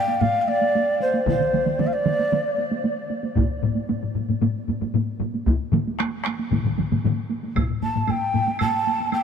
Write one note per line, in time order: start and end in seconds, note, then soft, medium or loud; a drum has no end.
0.00 0.22 G5 medium
0.08 taiko high soft
0.21 0.41 F5 medium
0.21 taiko low-mid loud
0.21 taiko high medium
0.41 0.50 F5 medium
0.48 1.01 D5 medium
0.48 taiko high soft
0.62 taiko high soft
0.75 taiko high medium
1.01 1.25 C5 medium
1.01 taiko high soft
1.14 taiko high medium
1.27 1.81 C5 medium
1.27 taiko medium
1.27 taiko mid medium
1.27 taiko high medium
1.41 taiko mid medium
1.53 taiko mid medium
1.53 taiko high soft
1.66 taiko mid medium
1.66 taiko high soft
1.79 1.88 D5 medium
1.79 taiko mid medium
1.79 taiko high medium
1.87 1.95 F5 medium
1.93 2.59 D5 medium
2.06 taiko mid medium
2.06 taiko high medium
2.19 taiko high soft
2.32 taiko mid medium
2.32 taiko high medium
2.58 taiko high soft
2.71 taiko high medium
2.84 taiko high medium
3.10 taiko high medium
3.23 taiko high medium
3.36 taiko medium
3.36 taiko low-mid medium
3.36 taiko high medium
3.63 taiko low-mid medium
3.63 taiko high soft
3.76 taiko high medium
3.89 taiko low-mid medium
3.89 taiko high medium
4.03 taiko low-mid medium
4.15 taiko low-mid medium
4.15 taiko high medium
4.29 taiko low-mid medium
4.29 taiko high medium
4.41 taiko low-mid loud
4.41 taiko high medium
4.68 taiko low-mid medium
4.68 taiko high medium
4.81 taiko low-mid medium
4.81 taiko high medium
4.94 taiko low-mid medium
4.94 taiko high medium
5.20 taiko low-mid medium
5.20 taiko high medium
5.34 taiko high medium
5.47 taiko medium
5.47 taiko high medium
5.72 taiko low-mid medium
5.72 taiko mid medium
5.72 taiko high medium
5.88 taiko high medium
5.99 taiko rim medium
5.99 taiko high medium
6.24 taiko rim medium
6.24 taiko high medium
6.39 taiko high medium
6.51 taiko medium
6.51 taiko low-mid medium
6.51 taiko mid medium
6.51 taiko high medium
6.64 taiko low-mid medium
6.64 taiko mid medium
6.78 taiko low-mid medium
6.78 taiko mid medium
6.78 taiko high medium
6.92 taiko low-mid medium
6.92 taiko mid medium
6.92 taiko high medium
7.04 taiko low-mid medium
7.04 taiko mid medium
7.04 taiko high medium
7.30 taiko high medium
7.43 taiko high medium
7.56 taiko medium
7.56 taiko low-mid medium
7.56 taiko high medium
7.56 high woodblock medium
7.70 taiko low-mid medium
7.82 8.12 A5 medium
7.82 taiko low-mid medium
7.82 taiko high medium
7.95 taiko low-mid medium
7.95 taiko high medium
8.07 8.60 G5 medium
8.07 taiko low-mid medium
8.07 taiko high medium
8.07 high woodblock soft
8.34 taiko low-mid medium
8.34 taiko high medium
8.47 taiko high medium
8.59 9.09 A5 medium
8.59 taiko low-mid medium
8.59 taiko high medium
8.59 high woodblock medium
8.87 taiko high medium
9.00 taiko high medium
9.12 9.23 G5 medium
9.12 taiko high medium
9.12 high woodblock soft